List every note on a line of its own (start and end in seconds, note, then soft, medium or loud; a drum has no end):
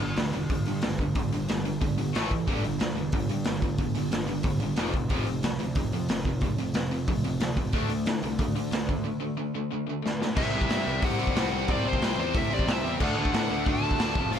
0.00 0.17 G1 medium
0.00 0.16 G2 medium
0.00 0.16 D3 medium
0.00 open hi-hat medium
0.16 0.33 D2 medium
0.16 0.33 G2 medium
0.16 0.33 D3 medium
0.16 snare loud
0.16 open hi-hat medium
0.33 0.49 E1 medium
0.33 0.49 G2 medium
0.33 0.50 D3 medium
0.33 open hi-hat medium
0.50 0.66 G1 medium
0.50 0.65 G2 medium
0.50 0.66 D3 medium
0.50 kick loud
0.50 open hi-hat medium
0.66 0.82 G2 medium
0.66 0.83 G2 medium
0.66 0.82 D3 medium
0.66 open hi-hat medium
0.82 1.15 G1 medium
0.82 0.98 G2 medium
0.82 0.98 D3 medium
0.82 snare loud
0.82 open hi-hat medium
0.98 1.15 G2 medium
0.98 1.15 D3 medium
0.98 kick medium
0.98 open hi-hat medium
1.15 1.31 G1 medium
1.15 1.31 G2 medium
1.15 1.31 D3 medium
1.15 kick loud
1.15 open hi-hat medium
1.32 1.48 G1 medium
1.32 1.47 G2 medium
1.32 1.47 D3 medium
1.32 open hi-hat medium
1.49 1.80 G1 medium
1.49 1.64 G2 medium
1.49 1.64 D3 medium
1.49 snare loud
1.49 open hi-hat medium
1.65 1.80 G2 medium
1.65 1.80 D3 medium
1.65 open hi-hat medium
1.81 1.97 G1 medium
1.81 1.96 G2 medium
1.81 1.96 D3 medium
1.81 kick loud
1.81 open hi-hat medium
1.98 2.14 G1 medium
1.98 2.13 G2 medium
1.98 2.13 D3 medium
1.98 open hi-hat medium
2.13 2.30 A1 medium
2.13 2.29 A2 medium
2.13 2.30 E3 loud
2.13 2.30 A3 loud
2.13 snare loud
2.13 open hi-hat medium
2.31 2.47 A1 medium
2.31 2.46 A2 medium
2.31 2.46 E3 medium
2.31 kick medium
2.31 open hi-hat medium
2.48 2.63 G1 medium
2.48 2.63 G2 medium
2.48 2.63 D3 medium
2.48 2.64 G3 medium
2.48 kick loud
2.48 open hi-hat medium
2.64 2.81 G1 medium
2.64 2.79 G2 medium
2.64 2.80 D3 medium
2.64 open hi-hat medium
2.80 2.96 D2 medium
2.80 2.95 G2 medium
2.80 2.96 D3 medium
2.80 snare loud
2.80 open hi-hat medium
2.97 3.12 E1 medium
2.97 3.12 G2 medium
2.97 3.12 D3 medium
2.97 open hi-hat soft
3.12 3.29 G1 medium
3.12 3.29 G2 medium
3.12 3.29 D3 medium
3.12 kick loud
3.12 open hi-hat medium
3.29 3.45 G2 medium
3.29 3.46 D3 medium
3.29 open hi-hat medium
3.44 3.78 G1 medium
3.44 3.61 G2 medium
3.44 3.62 D3 medium
3.44 snare loud
3.44 open hi-hat medium
3.62 3.78 G2 medium
3.62 3.78 D3 medium
3.62 kick medium
3.62 open hi-hat medium
3.78 3.94 G1 medium
3.78 3.95 G2 medium
3.78 3.95 D3 medium
3.78 kick medium
3.78 open hi-hat medium
3.95 4.11 G1 medium
3.95 4.11 G2 medium
3.95 4.11 D3 medium
3.95 open hi-hat medium
4.12 4.43 G1 medium
4.12 4.27 G2 medium
4.12 4.27 D3 medium
4.12 snare loud
4.12 open hi-hat medium
4.28 4.43 G2 medium
4.28 4.43 D3 medium
4.28 open hi-hat medium
4.43 4.60 G1 medium
4.43 4.60 G2 medium
4.43 4.60 D3 medium
4.43 kick loud
4.43 open hi-hat medium
4.60 4.77 G1 medium
4.60 4.77 G2 medium
4.60 4.77 D3 medium
4.60 open hi-hat medium
4.76 4.93 F1 medium
4.76 4.94 F2 medium
4.76 4.94 C3 medium
4.76 4.94 F3 loud
4.76 snare loud
4.76 open hi-hat medium
4.94 5.10 F1 medium
4.94 5.09 F2 medium
4.94 5.10 C3 medium
4.94 kick medium
4.94 open hi-hat medium
5.10 5.25 F1 medium
5.10 5.26 F2 medium
5.10 5.26 C3 medium
5.10 5.26 F3 medium
5.10 kick loud
5.10 open hi-hat medium
5.26 5.42 F1 medium
5.26 5.42 F2 medium
5.26 5.42 C3 medium
5.26 open hi-hat medium
5.43 5.59 C2 medium
5.43 5.59 F2 medium
5.43 5.59 C3 medium
5.43 snare loud
5.43 open hi-hat medium
5.59 5.76 D2 medium
5.59 5.75 F2 medium
5.59 5.75 C3 medium
5.59 open hi-hat soft
5.75 5.92 F1 medium
5.75 5.92 F2 medium
5.75 5.92 C3 medium
5.75 kick loud
5.75 open hi-hat medium
5.92 6.08 F2 medium
5.92 6.08 C3 medium
5.92 open hi-hat medium
6.09 6.40 F1 medium
6.09 6.25 F2 medium
6.09 6.25 C3 medium
6.09 snare loud
6.09 open hi-hat medium
6.25 6.41 F2 medium
6.25 6.42 C3 medium
6.25 kick medium
6.25 open hi-hat medium
6.41 6.56 F1 loud
6.41 6.57 F2 medium
6.41 6.58 C3 medium
6.41 kick loud
6.41 open hi-hat medium
6.57 6.73 F1 medium
6.57 6.74 F2 medium
6.57 6.74 C3 medium
6.57 open hi-hat medium
6.74 7.06 F1 medium
6.74 6.91 F2 medium
6.74 6.91 C3 medium
6.74 snare loud
6.74 open hi-hat medium
6.91 7.07 F2 medium
6.91 7.07 C3 medium
6.91 open hi-hat medium
7.08 7.24 F1 medium
7.08 7.24 F2 medium
7.08 7.23 C3 medium
7.08 kick loud
7.08 open hi-hat medium
7.24 7.39 F1 medium
7.24 7.40 F2 medium
7.24 7.40 C3 medium
7.24 open hi-hat medium
7.40 7.56 D2 medium
7.40 7.56 F2 medium
7.40 7.56 C3 medium
7.40 snare loud
7.40 open hi-hat medium
7.57 7.73 F1 medium
7.57 7.72 F2 medium
7.57 7.72 C3 medium
7.57 kick medium
7.57 open hi-hat medium
7.73 7.89 D2 medium
7.73 7.89 D3 medium
7.73 7.90 A3 medium
7.73 7.90 D4 medium
7.73 kick loud
7.73 open hi-hat medium
7.89 8.05 D2 medium
7.89 8.05 D3 medium
7.89 8.06 A3 medium
7.89 open hi-hat medium
8.06 8.22 A2 medium
8.06 8.22 D3 medium
8.06 8.22 A3 medium
8.06 snare loud
8.06 open hi-hat medium
8.23 8.38 C2 medium
8.23 8.38 D3 medium
8.23 8.38 A3 medium
8.23 open hi-hat medium
8.39 8.55 D2 medium
8.39 8.54 D3 medium
8.39 8.55 A3 medium
8.39 kick loud
8.39 open hi-hat medium
8.55 8.70 D3 medium
8.55 8.70 A3 medium
8.55 open hi-hat medium
8.71 9.03 D2 medium
8.71 8.86 D3 medium
8.71 8.86 A3 medium
8.71 snare loud
8.71 open hi-hat medium
8.87 9.03 D3 medium
8.87 9.03 A3 medium
8.87 kick medium
8.87 open hi-hat soft
9.04 9.19 D3 medium
9.04 9.19 A3 medium
9.20 9.36 D3 medium
9.20 9.36 A3 medium
9.37 9.53 D3 medium
9.37 9.53 A3 medium
9.55 9.69 D3 medium
9.55 9.70 A3 medium
9.71 9.85 D3 medium
9.71 9.86 A3 medium
9.87 10.01 D3 medium
9.87 10.01 A3 medium
10.03 10.18 D3 medium
10.03 10.18 A3 medium
10.03 snare medium
10.20 10.36 D3 medium
10.20 10.36 A3 medium
10.20 snare medium
10.36 10.50 C2 medium
10.36 10.54 C3 loud
10.36 10.53 G3 medium
10.36 10.53 C4 loud
10.36 11.05 E5 loud
10.36 kick loud
10.36 crash loud
10.53 10.67 C2 medium
10.53 10.69 C3 medium
10.53 10.69 G3 medium
10.53 10.70 C4 medium
10.61 kick medium
10.69 10.83 G2 medium
10.69 10.86 C3 medium
10.69 10.86 G3 medium
10.69 10.85 C4 medium
10.69 snare loud
10.69 open hi-hat medium
10.86 11.00 C2 loud
10.86 11.01 C3 medium
10.86 11.01 G3 medium
10.86 11.02 C4 loud
11.02 11.29 C2 loud
11.02 11.19 C3 medium
11.02 11.18 G3 medium
11.02 11.18 C4 medium
11.02 11.72 F#5 loud
11.02 kick loud
11.02 open hi-hat medium
11.19 11.33 C3 medium
11.19 11.34 G3 loud
11.19 11.34 C4 loud
11.27 kick medium
11.35 11.49 C2 medium
11.35 11.52 C3 medium
11.35 11.52 G3 loud
11.35 11.51 C4 loud
11.35 snare loud
11.35 open hi-hat medium
11.52 11.65 C2 medium
11.52 11.68 C3 medium
11.52 11.68 G3 loud
11.52 11.69 C4 loud
11.68 11.82 C2 loud
11.68 11.85 C3 medium
11.68 11.85 G3 loud
11.68 11.84 C4 loud
11.68 11.87 D5 loud
11.68 kick loud
11.68 open hi-hat medium
11.85 11.98 C2 loud
11.85 12.01 C3 medium
11.85 12.01 G3 medium
11.85 12.02 C4 medium
11.85 12.19 C5 loud
11.93 kick medium
12.01 12.15 C2 medium
12.01 12.17 C3 loud
12.01 12.17 G3 loud
12.01 12.16 C4 loud
12.01 snare loud
12.01 open hi-hat medium
12.17 12.31 E2 loud
12.17 12.33 C3 medium
12.17 12.33 G3 medium
12.17 12.34 C4 loud
12.17 12.36 C5 loud
12.34 12.48 A2 loud
12.34 12.50 C3 medium
12.34 12.50 G3 medium
12.34 12.50 C4 medium
12.34 12.54 E5 loud
12.34 kick loud
12.34 open hi-hat medium
12.50 12.64 A1 medium
12.50 12.65 C3 medium
12.50 12.66 G3 loud
12.50 12.67 C4 loud
12.50 12.71 D5 loud
12.59 kick medium
12.66 12.81 C2 medium
12.66 12.83 C3 medium
12.66 12.83 G3 medium
12.66 12.82 C4 loud
12.66 snare loud
12.66 open hi-hat medium
12.71 12.94 E5 loud
12.83 12.97 E2 medium
12.83 12.98 C3 medium
12.83 12.99 G3 loud
12.83 12.99 C4 loud
12.99 13.14 D2 loud
12.99 13.16 D3 medium
12.99 13.16 A3 loud
12.99 13.15 D4 loud
12.99 kick loud
12.99 crash loud
13.04 13.64 F#5 loud
13.16 13.30 D2 loud
13.16 13.31 D3 medium
13.16 13.33 A3 medium
13.16 13.33 D4 loud
13.25 kick loud
13.32 13.47 A2 medium
13.32 13.50 D3 loud
13.32 13.50 A3 medium
13.32 13.49 D4 loud
13.32 snare loud
13.32 open hi-hat medium
13.50 13.63 D2 loud
13.50 13.66 D3 medium
13.50 13.67 A3 loud
13.50 13.67 D4 loud
13.66 13.93 D2 loud
13.66 13.84 D3 medium
13.66 13.83 A3 medium
13.66 13.82 D4 medium
13.66 14.30 A5 loud
13.66 kick loud
13.66 open hi-hat medium
13.83 13.99 D3 medium
13.83 13.99 A3 loud
13.83 14.00 D4 loud
13.91 kick medium
13.99 14.12 D2 medium
13.99 14.15 D3 medium
13.99 14.16 A3 medium
13.99 14.16 D4 medium
13.99 snare loud
13.99 open hi-hat medium
14.15 14.29 F1 medium
14.15 14.31 F2 loud
14.15 14.31 C3 loud
14.15 14.30 F3 loud
14.15 kick loud
14.31 14.39 F1 loud
14.31 14.39 F2 medium
14.31 14.39 C3 loud
14.31 14.39 F3 loud
14.31 open hi-hat medium